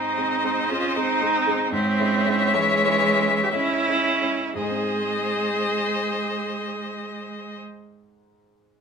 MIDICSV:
0, 0, Header, 1, 6, 480
1, 0, Start_track
1, 0, Key_signature, -4, "major"
1, 0, Tempo, 774194
1, 1072, Time_signature, 3, 2, 24, 8
1, 1072, Tempo, 825309
1, 1552, Tempo, 974026
1, 2032, Tempo, 1025641
1, 2512, Tempo, 960000
1, 4638, End_track
2, 0, Start_track
2, 0, Title_t, "Violin"
2, 0, Program_c, 0, 40
2, 0, Note_on_c, 0, 75, 82
2, 1050, Note_off_c, 0, 75, 0
2, 1073, Note_on_c, 0, 76, 99
2, 2369, Note_off_c, 0, 76, 0
2, 2513, Note_on_c, 0, 75, 86
2, 4023, Note_off_c, 0, 75, 0
2, 4638, End_track
3, 0, Start_track
3, 0, Title_t, "Violin"
3, 0, Program_c, 1, 40
3, 0, Note_on_c, 1, 72, 76
3, 1047, Note_off_c, 1, 72, 0
3, 1078, Note_on_c, 1, 73, 109
3, 2371, Note_off_c, 1, 73, 0
3, 2514, Note_on_c, 1, 72, 86
3, 4023, Note_off_c, 1, 72, 0
3, 4638, End_track
4, 0, Start_track
4, 0, Title_t, "Viola"
4, 0, Program_c, 2, 41
4, 0, Note_on_c, 2, 63, 105
4, 428, Note_on_c, 2, 65, 118
4, 438, Note_off_c, 2, 63, 0
4, 592, Note_on_c, 2, 63, 123
4, 602, Note_off_c, 2, 65, 0
4, 1071, Note_off_c, 2, 63, 0
4, 1075, Note_on_c, 2, 60, 127
4, 1550, Note_on_c, 2, 56, 127
4, 1557, Note_off_c, 2, 60, 0
4, 1984, Note_on_c, 2, 67, 96
4, 1991, Note_off_c, 2, 56, 0
4, 2026, Note_on_c, 2, 64, 127
4, 2034, Note_off_c, 2, 67, 0
4, 2509, Note_off_c, 2, 64, 0
4, 2512, Note_on_c, 2, 68, 109
4, 4022, Note_off_c, 2, 68, 0
4, 4638, End_track
5, 0, Start_track
5, 0, Title_t, "Cello"
5, 0, Program_c, 3, 42
5, 0, Note_on_c, 3, 60, 95
5, 430, Note_on_c, 3, 61, 107
5, 439, Note_off_c, 3, 60, 0
5, 595, Note_on_c, 3, 60, 117
5, 604, Note_off_c, 3, 61, 0
5, 1070, Note_off_c, 3, 60, 0
5, 1073, Note_on_c, 3, 56, 117
5, 1557, Note_on_c, 3, 52, 115
5, 1564, Note_off_c, 3, 56, 0
5, 2041, Note_on_c, 3, 61, 110
5, 2048, Note_off_c, 3, 52, 0
5, 2516, Note_off_c, 3, 61, 0
5, 2519, Note_on_c, 3, 56, 84
5, 4028, Note_off_c, 3, 56, 0
5, 4638, End_track
6, 0, Start_track
6, 0, Title_t, "Grand piano"
6, 0, Program_c, 4, 0
6, 0, Control_c, 4, 64, 127
6, 0, Note_on_c, 4, 44, 78
6, 0, Note_on_c, 4, 56, 57
6, 0, Note_on_c, 4, 60, 55
6, 0, Note_on_c, 4, 68, 64
6, 94, Note_off_c, 4, 56, 0
6, 95, Note_off_c, 4, 60, 0
6, 96, Note_off_c, 4, 68, 0
6, 109, Note_on_c, 4, 56, 66
6, 113, Note_on_c, 4, 60, 64
6, 113, Note_on_c, 4, 68, 69
6, 254, Note_off_c, 4, 56, 0
6, 256, Note_off_c, 4, 60, 0
6, 256, Note_off_c, 4, 68, 0
6, 271, Note_on_c, 4, 56, 64
6, 273, Note_on_c, 4, 68, 69
6, 274, Note_on_c, 4, 60, 63
6, 414, Note_off_c, 4, 56, 0
6, 415, Note_off_c, 4, 60, 0
6, 415, Note_off_c, 4, 68, 0
6, 433, Note_on_c, 4, 56, 64
6, 434, Note_on_c, 4, 60, 60
6, 437, Note_on_c, 4, 68, 65
6, 575, Note_off_c, 4, 56, 0
6, 575, Note_off_c, 4, 60, 0
6, 577, Note_off_c, 4, 68, 0
6, 595, Note_on_c, 4, 56, 67
6, 597, Note_on_c, 4, 60, 72
6, 599, Note_on_c, 4, 68, 74
6, 736, Note_off_c, 4, 56, 0
6, 737, Note_off_c, 4, 60, 0
6, 738, Note_off_c, 4, 68, 0
6, 750, Note_on_c, 4, 56, 70
6, 755, Note_on_c, 4, 60, 69
6, 759, Note_on_c, 4, 68, 78
6, 895, Note_off_c, 4, 56, 0
6, 897, Note_off_c, 4, 60, 0
6, 899, Note_off_c, 4, 68, 0
6, 906, Note_on_c, 4, 56, 78
6, 909, Note_on_c, 4, 60, 81
6, 911, Note_on_c, 4, 68, 86
6, 1054, Note_off_c, 4, 56, 0
6, 1056, Note_off_c, 4, 60, 0
6, 1057, Note_off_c, 4, 68, 0
6, 1067, Note_off_c, 4, 44, 0
6, 1067, Note_on_c, 4, 44, 103
6, 1084, Control_c, 4, 64, 0
6, 1175, Control_c, 4, 64, 127
6, 1220, Note_off_c, 4, 44, 0
6, 1223, Note_on_c, 4, 56, 75
6, 1228, Note_on_c, 4, 61, 82
6, 1230, Note_on_c, 4, 64, 80
6, 1368, Note_off_c, 4, 56, 0
6, 1370, Note_off_c, 4, 61, 0
6, 1371, Note_off_c, 4, 64, 0
6, 1380, Note_on_c, 4, 56, 77
6, 1382, Note_on_c, 4, 61, 74
6, 1386, Note_on_c, 4, 64, 80
6, 1532, Note_off_c, 4, 56, 0
6, 1533, Note_off_c, 4, 61, 0
6, 1535, Note_off_c, 4, 64, 0
6, 1543, Note_on_c, 4, 56, 80
6, 1546, Note_on_c, 4, 61, 82
6, 1548, Note_on_c, 4, 64, 86
6, 1683, Note_off_c, 4, 56, 0
6, 1684, Note_off_c, 4, 61, 0
6, 1685, Note_off_c, 4, 64, 0
6, 1695, Note_on_c, 4, 56, 76
6, 1696, Note_on_c, 4, 61, 78
6, 1699, Note_on_c, 4, 64, 83
6, 1845, Note_off_c, 4, 56, 0
6, 1846, Note_off_c, 4, 61, 0
6, 1847, Note_off_c, 4, 64, 0
6, 1862, Note_on_c, 4, 56, 69
6, 1864, Note_on_c, 4, 61, 71
6, 1865, Note_on_c, 4, 64, 73
6, 2013, Note_off_c, 4, 56, 0
6, 2015, Note_off_c, 4, 61, 0
6, 2015, Note_off_c, 4, 64, 0
6, 2031, Note_on_c, 4, 56, 74
6, 2032, Note_on_c, 4, 61, 73
6, 2035, Note_on_c, 4, 64, 78
6, 2177, Note_off_c, 4, 56, 0
6, 2177, Note_off_c, 4, 61, 0
6, 2179, Note_off_c, 4, 64, 0
6, 2195, Note_on_c, 4, 56, 65
6, 2196, Note_on_c, 4, 61, 65
6, 2198, Note_on_c, 4, 64, 68
6, 2341, Note_off_c, 4, 56, 0
6, 2342, Note_off_c, 4, 61, 0
6, 2343, Note_off_c, 4, 64, 0
6, 2355, Note_on_c, 4, 56, 64
6, 2357, Note_on_c, 4, 61, 64
6, 2359, Note_on_c, 4, 64, 69
6, 2495, Note_off_c, 4, 56, 0
6, 2496, Note_off_c, 4, 61, 0
6, 2497, Note_off_c, 4, 64, 0
6, 2511, Note_on_c, 4, 44, 70
6, 2523, Control_c, 4, 64, 0
6, 2544, Note_on_c, 4, 56, 73
6, 2581, Note_on_c, 4, 60, 70
6, 2616, Note_on_c, 4, 63, 71
6, 2622, Control_c, 4, 64, 127
6, 2651, Note_on_c, 4, 72, 68
6, 4021, Note_off_c, 4, 44, 0
6, 4054, Note_off_c, 4, 56, 0
6, 4091, Note_off_c, 4, 60, 0
6, 4126, Note_off_c, 4, 63, 0
6, 4160, Note_off_c, 4, 72, 0
6, 4638, End_track
0, 0, End_of_file